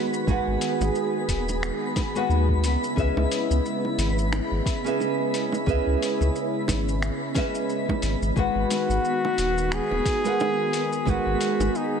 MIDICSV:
0, 0, Header, 1, 7, 480
1, 0, Start_track
1, 0, Key_signature, 4, "minor"
1, 0, Tempo, 674157
1, 201, Time_signature, 4, 2, 24, 8
1, 8544, End_track
2, 0, Start_track
2, 0, Title_t, "Synth texture"
2, 0, Program_c, 0, 99
2, 0, Note_on_c, 0, 59, 87
2, 0, Note_on_c, 0, 83, 82
2, 5959, Note_off_c, 0, 59, 0
2, 5968, Note_on_c, 0, 59, 86
2, 5971, Note_off_c, 0, 83, 0
2, 5971, Note_on_c, 0, 95, 87
2, 8544, Note_off_c, 0, 59, 0
2, 8544, Note_off_c, 0, 95, 0
2, 8544, End_track
3, 0, Start_track
3, 0, Title_t, "Nylon-string guitar"
3, 0, Program_c, 1, 24
3, 0, Note_on_c, 1, 56, 80
3, 0, Note_on_c, 1, 66, 67
3, 0, Note_on_c, 1, 68, 69
3, 0, Note_on_c, 1, 71, 68
3, 0, Note_on_c, 1, 78, 83
3, 172, Note_off_c, 1, 56, 0
3, 175, Note_off_c, 1, 68, 0
3, 178, Note_off_c, 1, 66, 0
3, 181, Note_off_c, 1, 71, 0
3, 185, Note_off_c, 1, 78, 0
3, 192, Note_on_c, 1, 56, 76
3, 200, Note_on_c, 1, 68, 73
3, 206, Note_on_c, 1, 66, 73
3, 211, Note_on_c, 1, 71, 69
3, 216, Note_on_c, 1, 78, 88
3, 1501, Note_off_c, 1, 56, 0
3, 1505, Note_off_c, 1, 68, 0
3, 1508, Note_off_c, 1, 66, 0
3, 1511, Note_off_c, 1, 71, 0
3, 1513, Note_off_c, 1, 78, 0
3, 1531, Note_on_c, 1, 56, 77
3, 1537, Note_on_c, 1, 68, 75
3, 1538, Note_on_c, 1, 66, 69
3, 1541, Note_on_c, 1, 71, 72
3, 1544, Note_on_c, 1, 78, 85
3, 1865, Note_off_c, 1, 56, 0
3, 1867, Note_off_c, 1, 68, 0
3, 1869, Note_off_c, 1, 66, 0
3, 1870, Note_off_c, 1, 71, 0
3, 1872, Note_off_c, 1, 78, 0
3, 2107, Note_on_c, 1, 61, 72
3, 2114, Note_on_c, 1, 68, 68
3, 2123, Note_on_c, 1, 71, 71
3, 2127, Note_on_c, 1, 75, 68
3, 2132, Note_on_c, 1, 76, 90
3, 3419, Note_off_c, 1, 61, 0
3, 3422, Note_off_c, 1, 68, 0
3, 3427, Note_off_c, 1, 71, 0
3, 3428, Note_off_c, 1, 75, 0
3, 3431, Note_off_c, 1, 76, 0
3, 3449, Note_on_c, 1, 61, 82
3, 3456, Note_on_c, 1, 68, 74
3, 3461, Note_on_c, 1, 71, 74
3, 3466, Note_on_c, 1, 75, 69
3, 3471, Note_on_c, 1, 76, 82
3, 4011, Note_off_c, 1, 61, 0
3, 4015, Note_off_c, 1, 68, 0
3, 4018, Note_off_c, 1, 71, 0
3, 4020, Note_off_c, 1, 75, 0
3, 4022, Note_off_c, 1, 76, 0
3, 4031, Note_on_c, 1, 61, 75
3, 4039, Note_on_c, 1, 68, 73
3, 4043, Note_on_c, 1, 71, 67
3, 4052, Note_on_c, 1, 75, 71
3, 4058, Note_on_c, 1, 76, 84
3, 5216, Note_off_c, 1, 61, 0
3, 5219, Note_off_c, 1, 68, 0
3, 5221, Note_off_c, 1, 71, 0
3, 5226, Note_off_c, 1, 75, 0
3, 5228, Note_on_c, 1, 61, 82
3, 5229, Note_off_c, 1, 76, 0
3, 5232, Note_on_c, 1, 68, 75
3, 5240, Note_on_c, 1, 71, 74
3, 5246, Note_on_c, 1, 75, 74
3, 5250, Note_on_c, 1, 76, 89
3, 5930, Note_off_c, 1, 61, 0
3, 5932, Note_off_c, 1, 68, 0
3, 5936, Note_off_c, 1, 71, 0
3, 5939, Note_off_c, 1, 75, 0
3, 5941, Note_off_c, 1, 76, 0
3, 5951, Note_on_c, 1, 56, 75
3, 5957, Note_on_c, 1, 68, 68
3, 5963, Note_on_c, 1, 66, 69
3, 5971, Note_on_c, 1, 71, 67
3, 5974, Note_on_c, 1, 78, 88
3, 7260, Note_off_c, 1, 56, 0
3, 7263, Note_off_c, 1, 68, 0
3, 7266, Note_off_c, 1, 66, 0
3, 7271, Note_off_c, 1, 71, 0
3, 7272, Note_off_c, 1, 78, 0
3, 7290, Note_on_c, 1, 56, 81
3, 7294, Note_on_c, 1, 68, 69
3, 7301, Note_on_c, 1, 70, 72
3, 7306, Note_on_c, 1, 71, 72
3, 7312, Note_on_c, 1, 78, 83
3, 7852, Note_off_c, 1, 56, 0
3, 7854, Note_off_c, 1, 68, 0
3, 7858, Note_off_c, 1, 70, 0
3, 7860, Note_off_c, 1, 71, 0
3, 7863, Note_off_c, 1, 78, 0
3, 7870, Note_on_c, 1, 56, 78
3, 7878, Note_on_c, 1, 68, 67
3, 7884, Note_on_c, 1, 70, 71
3, 7889, Note_on_c, 1, 71, 74
3, 7894, Note_on_c, 1, 78, 90
3, 8544, Note_off_c, 1, 56, 0
3, 8544, Note_off_c, 1, 68, 0
3, 8544, Note_off_c, 1, 70, 0
3, 8544, Note_off_c, 1, 71, 0
3, 8544, Note_off_c, 1, 78, 0
3, 8544, End_track
4, 0, Start_track
4, 0, Title_t, "Muted trumpet"
4, 0, Program_c, 2, 59
4, 5965, Note_on_c, 2, 66, 108
4, 6935, Note_on_c, 2, 68, 118
4, 6946, Note_off_c, 2, 66, 0
4, 7900, Note_on_c, 2, 66, 105
4, 7911, Note_off_c, 2, 68, 0
4, 8384, Note_on_c, 2, 63, 90
4, 8394, Note_off_c, 2, 66, 0
4, 8544, Note_off_c, 2, 63, 0
4, 8544, End_track
5, 0, Start_track
5, 0, Title_t, "Analog synth pad"
5, 0, Program_c, 3, 89
5, 0, Note_on_c, 3, 51, 80
5, 0, Note_on_c, 3, 56, 76
5, 0, Note_on_c, 3, 59, 74
5, 0, Note_on_c, 3, 66, 86
5, 182, Note_off_c, 3, 66, 0
5, 193, Note_on_c, 3, 68, 93
5, 1852, Note_off_c, 3, 56, 0
5, 1853, Note_off_c, 3, 51, 0
5, 1860, Note_off_c, 3, 68, 0
5, 1881, Note_on_c, 3, 49, 77
5, 1884, Note_on_c, 3, 56, 72
5, 1884, Note_on_c, 3, 64, 82
5, 3774, Note_off_c, 3, 59, 0
5, 3796, Note_on_c, 3, 61, 74
5, 5933, Note_off_c, 3, 49, 0
5, 5934, Note_off_c, 3, 64, 0
5, 5937, Note_off_c, 3, 61, 0
5, 5962, Note_on_c, 3, 51, 83
5, 5963, Note_on_c, 3, 59, 71
5, 5963, Note_on_c, 3, 66, 92
5, 7863, Note_off_c, 3, 66, 0
5, 7886, Note_on_c, 3, 68, 87
5, 8544, Note_off_c, 3, 51, 0
5, 8544, Note_off_c, 3, 56, 0
5, 8544, Note_off_c, 3, 59, 0
5, 8544, Note_off_c, 3, 68, 0
5, 8544, End_track
6, 0, Start_track
6, 0, Title_t, "Sub bass"
6, 0, Program_c, 4, 38
6, 193, Note_on_c, 4, 32, 99
6, 284, Note_off_c, 4, 32, 0
6, 335, Note_on_c, 4, 32, 91
6, 402, Note_off_c, 4, 32, 0
6, 571, Note_on_c, 4, 32, 89
6, 640, Note_off_c, 4, 32, 0
6, 912, Note_on_c, 4, 27, 99
6, 1214, Note_off_c, 4, 27, 0
6, 1629, Note_on_c, 4, 39, 95
6, 1874, Note_on_c, 4, 37, 76
6, 1885, Note_off_c, 4, 39, 0
6, 1965, Note_off_c, 4, 37, 0
6, 2114, Note_on_c, 4, 37, 102
6, 2205, Note_off_c, 4, 37, 0
6, 2250, Note_on_c, 4, 37, 84
6, 2320, Note_off_c, 4, 37, 0
6, 2492, Note_on_c, 4, 37, 86
6, 2561, Note_off_c, 4, 37, 0
6, 2832, Note_on_c, 4, 32, 101
6, 3134, Note_off_c, 4, 32, 0
6, 3211, Note_on_c, 4, 32, 85
6, 3280, Note_off_c, 4, 32, 0
6, 4035, Note_on_c, 4, 37, 96
6, 4126, Note_off_c, 4, 37, 0
6, 4175, Note_on_c, 4, 37, 80
6, 4242, Note_off_c, 4, 37, 0
6, 4416, Note_on_c, 4, 37, 86
6, 4483, Note_off_c, 4, 37, 0
6, 4755, Note_on_c, 4, 32, 91
6, 5056, Note_off_c, 4, 32, 0
6, 5713, Note_on_c, 4, 32, 89
6, 5805, Note_off_c, 4, 32, 0
6, 5849, Note_on_c, 4, 32, 104
6, 5919, Note_off_c, 4, 32, 0
6, 5954, Note_on_c, 4, 32, 94
6, 6045, Note_off_c, 4, 32, 0
6, 6086, Note_on_c, 4, 32, 85
6, 6158, Note_off_c, 4, 32, 0
6, 6329, Note_on_c, 4, 32, 88
6, 6399, Note_off_c, 4, 32, 0
6, 6676, Note_on_c, 4, 27, 99
6, 6976, Note_off_c, 4, 27, 0
6, 7054, Note_on_c, 4, 27, 82
6, 7122, Note_off_c, 4, 27, 0
6, 7877, Note_on_c, 4, 32, 97
6, 7967, Note_off_c, 4, 32, 0
6, 8015, Note_on_c, 4, 32, 88
6, 8082, Note_off_c, 4, 32, 0
6, 8254, Note_on_c, 4, 32, 89
6, 8322, Note_off_c, 4, 32, 0
6, 8544, End_track
7, 0, Start_track
7, 0, Title_t, "Drums"
7, 97, Note_on_c, 9, 82, 43
7, 168, Note_off_c, 9, 82, 0
7, 195, Note_on_c, 9, 36, 106
7, 199, Note_on_c, 9, 82, 31
7, 201, Note_on_c, 9, 60, 49
7, 267, Note_off_c, 9, 36, 0
7, 270, Note_off_c, 9, 82, 0
7, 272, Note_off_c, 9, 60, 0
7, 436, Note_on_c, 9, 46, 85
7, 438, Note_on_c, 9, 82, 73
7, 507, Note_off_c, 9, 46, 0
7, 509, Note_off_c, 9, 82, 0
7, 576, Note_on_c, 9, 82, 40
7, 579, Note_on_c, 9, 60, 66
7, 648, Note_off_c, 9, 82, 0
7, 651, Note_off_c, 9, 60, 0
7, 677, Note_on_c, 9, 82, 31
7, 748, Note_off_c, 9, 82, 0
7, 915, Note_on_c, 9, 36, 54
7, 916, Note_on_c, 9, 46, 84
7, 918, Note_on_c, 9, 82, 70
7, 986, Note_off_c, 9, 36, 0
7, 988, Note_off_c, 9, 46, 0
7, 990, Note_off_c, 9, 82, 0
7, 1058, Note_on_c, 9, 82, 40
7, 1061, Note_on_c, 9, 60, 44
7, 1129, Note_off_c, 9, 82, 0
7, 1133, Note_off_c, 9, 60, 0
7, 1160, Note_on_c, 9, 26, 73
7, 1162, Note_on_c, 9, 82, 30
7, 1231, Note_off_c, 9, 26, 0
7, 1233, Note_off_c, 9, 82, 0
7, 1396, Note_on_c, 9, 36, 93
7, 1396, Note_on_c, 9, 46, 85
7, 1398, Note_on_c, 9, 82, 68
7, 1401, Note_on_c, 9, 60, 73
7, 1467, Note_off_c, 9, 36, 0
7, 1467, Note_off_c, 9, 46, 0
7, 1469, Note_off_c, 9, 82, 0
7, 1472, Note_off_c, 9, 60, 0
7, 1536, Note_on_c, 9, 82, 40
7, 1607, Note_off_c, 9, 82, 0
7, 1641, Note_on_c, 9, 82, 28
7, 1712, Note_off_c, 9, 82, 0
7, 1774, Note_on_c, 9, 36, 57
7, 1845, Note_off_c, 9, 36, 0
7, 1877, Note_on_c, 9, 46, 83
7, 1879, Note_on_c, 9, 82, 76
7, 1882, Note_on_c, 9, 60, 40
7, 1948, Note_off_c, 9, 46, 0
7, 1950, Note_off_c, 9, 82, 0
7, 1953, Note_off_c, 9, 60, 0
7, 2020, Note_on_c, 9, 82, 39
7, 2091, Note_off_c, 9, 82, 0
7, 2116, Note_on_c, 9, 36, 100
7, 2121, Note_on_c, 9, 82, 29
7, 2187, Note_off_c, 9, 36, 0
7, 2192, Note_off_c, 9, 82, 0
7, 2258, Note_on_c, 9, 60, 76
7, 2329, Note_off_c, 9, 60, 0
7, 2360, Note_on_c, 9, 46, 92
7, 2362, Note_on_c, 9, 82, 68
7, 2431, Note_off_c, 9, 46, 0
7, 2433, Note_off_c, 9, 82, 0
7, 2499, Note_on_c, 9, 82, 38
7, 2571, Note_off_c, 9, 82, 0
7, 2603, Note_on_c, 9, 82, 30
7, 2674, Note_off_c, 9, 82, 0
7, 2739, Note_on_c, 9, 60, 47
7, 2810, Note_off_c, 9, 60, 0
7, 2838, Note_on_c, 9, 46, 88
7, 2840, Note_on_c, 9, 82, 74
7, 2909, Note_off_c, 9, 46, 0
7, 2911, Note_off_c, 9, 82, 0
7, 2979, Note_on_c, 9, 82, 38
7, 3050, Note_off_c, 9, 82, 0
7, 3079, Note_on_c, 9, 60, 62
7, 3080, Note_on_c, 9, 26, 72
7, 3082, Note_on_c, 9, 82, 30
7, 3150, Note_off_c, 9, 60, 0
7, 3151, Note_off_c, 9, 26, 0
7, 3153, Note_off_c, 9, 82, 0
7, 3316, Note_on_c, 9, 36, 100
7, 3322, Note_on_c, 9, 46, 87
7, 3324, Note_on_c, 9, 82, 70
7, 3387, Note_off_c, 9, 36, 0
7, 3393, Note_off_c, 9, 46, 0
7, 3395, Note_off_c, 9, 82, 0
7, 3461, Note_on_c, 9, 82, 41
7, 3532, Note_off_c, 9, 82, 0
7, 3562, Note_on_c, 9, 60, 45
7, 3567, Note_on_c, 9, 82, 31
7, 3633, Note_off_c, 9, 60, 0
7, 3639, Note_off_c, 9, 82, 0
7, 3801, Note_on_c, 9, 46, 87
7, 3803, Note_on_c, 9, 82, 74
7, 3873, Note_off_c, 9, 46, 0
7, 3875, Note_off_c, 9, 82, 0
7, 3933, Note_on_c, 9, 60, 66
7, 3946, Note_on_c, 9, 82, 40
7, 4004, Note_off_c, 9, 60, 0
7, 4017, Note_off_c, 9, 82, 0
7, 4037, Note_on_c, 9, 36, 110
7, 4047, Note_on_c, 9, 82, 28
7, 4108, Note_off_c, 9, 36, 0
7, 4118, Note_off_c, 9, 82, 0
7, 4290, Note_on_c, 9, 46, 95
7, 4292, Note_on_c, 9, 82, 72
7, 4361, Note_off_c, 9, 46, 0
7, 4363, Note_off_c, 9, 82, 0
7, 4421, Note_on_c, 9, 60, 47
7, 4427, Note_on_c, 9, 82, 39
7, 4492, Note_off_c, 9, 60, 0
7, 4498, Note_off_c, 9, 82, 0
7, 4525, Note_on_c, 9, 82, 30
7, 4596, Note_off_c, 9, 82, 0
7, 4756, Note_on_c, 9, 60, 78
7, 4757, Note_on_c, 9, 36, 59
7, 4762, Note_on_c, 9, 46, 97
7, 4764, Note_on_c, 9, 82, 72
7, 4827, Note_off_c, 9, 60, 0
7, 4828, Note_off_c, 9, 36, 0
7, 4833, Note_off_c, 9, 46, 0
7, 4835, Note_off_c, 9, 82, 0
7, 4902, Note_on_c, 9, 82, 38
7, 4973, Note_off_c, 9, 82, 0
7, 5002, Note_on_c, 9, 26, 73
7, 5004, Note_on_c, 9, 82, 30
7, 5073, Note_off_c, 9, 26, 0
7, 5075, Note_off_c, 9, 82, 0
7, 5236, Note_on_c, 9, 46, 86
7, 5237, Note_on_c, 9, 36, 92
7, 5238, Note_on_c, 9, 82, 72
7, 5243, Note_on_c, 9, 60, 51
7, 5307, Note_off_c, 9, 46, 0
7, 5308, Note_off_c, 9, 36, 0
7, 5309, Note_off_c, 9, 82, 0
7, 5314, Note_off_c, 9, 60, 0
7, 5374, Note_on_c, 9, 82, 40
7, 5445, Note_off_c, 9, 82, 0
7, 5478, Note_on_c, 9, 82, 32
7, 5549, Note_off_c, 9, 82, 0
7, 5615, Note_on_c, 9, 36, 58
7, 5621, Note_on_c, 9, 60, 80
7, 5686, Note_off_c, 9, 36, 0
7, 5692, Note_off_c, 9, 60, 0
7, 5712, Note_on_c, 9, 46, 84
7, 5714, Note_on_c, 9, 82, 70
7, 5784, Note_off_c, 9, 46, 0
7, 5786, Note_off_c, 9, 82, 0
7, 5855, Note_on_c, 9, 82, 37
7, 5927, Note_off_c, 9, 82, 0
7, 5956, Note_on_c, 9, 36, 104
7, 5958, Note_on_c, 9, 82, 29
7, 6027, Note_off_c, 9, 36, 0
7, 6029, Note_off_c, 9, 82, 0
7, 6198, Note_on_c, 9, 46, 91
7, 6200, Note_on_c, 9, 82, 76
7, 6204, Note_on_c, 9, 60, 47
7, 6269, Note_off_c, 9, 46, 0
7, 6271, Note_off_c, 9, 82, 0
7, 6275, Note_off_c, 9, 60, 0
7, 6339, Note_on_c, 9, 82, 39
7, 6410, Note_off_c, 9, 82, 0
7, 6442, Note_on_c, 9, 82, 32
7, 6513, Note_off_c, 9, 82, 0
7, 6584, Note_on_c, 9, 60, 70
7, 6655, Note_off_c, 9, 60, 0
7, 6679, Note_on_c, 9, 46, 92
7, 6681, Note_on_c, 9, 82, 72
7, 6751, Note_off_c, 9, 46, 0
7, 6753, Note_off_c, 9, 82, 0
7, 6820, Note_on_c, 9, 82, 40
7, 6891, Note_off_c, 9, 82, 0
7, 6919, Note_on_c, 9, 26, 80
7, 6921, Note_on_c, 9, 82, 31
7, 6990, Note_off_c, 9, 26, 0
7, 6992, Note_off_c, 9, 82, 0
7, 7059, Note_on_c, 9, 60, 49
7, 7130, Note_off_c, 9, 60, 0
7, 7158, Note_on_c, 9, 36, 98
7, 7160, Note_on_c, 9, 46, 90
7, 7162, Note_on_c, 9, 82, 74
7, 7230, Note_off_c, 9, 36, 0
7, 7231, Note_off_c, 9, 46, 0
7, 7233, Note_off_c, 9, 82, 0
7, 7298, Note_on_c, 9, 82, 41
7, 7370, Note_off_c, 9, 82, 0
7, 7403, Note_on_c, 9, 82, 30
7, 7410, Note_on_c, 9, 60, 87
7, 7474, Note_off_c, 9, 82, 0
7, 7481, Note_off_c, 9, 60, 0
7, 7642, Note_on_c, 9, 46, 92
7, 7644, Note_on_c, 9, 82, 75
7, 7713, Note_off_c, 9, 46, 0
7, 7715, Note_off_c, 9, 82, 0
7, 7778, Note_on_c, 9, 82, 40
7, 7850, Note_off_c, 9, 82, 0
7, 7880, Note_on_c, 9, 36, 108
7, 7883, Note_on_c, 9, 60, 54
7, 7887, Note_on_c, 9, 82, 31
7, 7951, Note_off_c, 9, 36, 0
7, 7954, Note_off_c, 9, 60, 0
7, 7958, Note_off_c, 9, 82, 0
7, 8121, Note_on_c, 9, 46, 85
7, 8123, Note_on_c, 9, 82, 78
7, 8192, Note_off_c, 9, 46, 0
7, 8194, Note_off_c, 9, 82, 0
7, 8262, Note_on_c, 9, 60, 71
7, 8263, Note_on_c, 9, 82, 41
7, 8334, Note_off_c, 9, 60, 0
7, 8334, Note_off_c, 9, 82, 0
7, 8366, Note_on_c, 9, 82, 33
7, 8437, Note_off_c, 9, 82, 0
7, 8544, End_track
0, 0, End_of_file